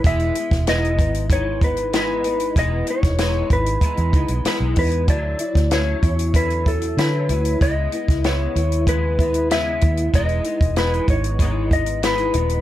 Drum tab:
HH |xxxxxxxxx-xxx-xx|x-xxx-xxxxxxx-ox|x-xxx-xxxxxxx-xx|x-xxx-xxx-xxx-xx|
SD |---oo-------o---|---oo-------o---|---oo-------o---|---oo-------o---|
BD |o--o--o-o-o-----|o--o--o-o-o---o-|o--o--o-o-o-----|o--o----o-o---o-|

HH |xxxxxxxxx-xxxxxx|
SD |----o-------o---|
BD |o--o--o-o-o-----|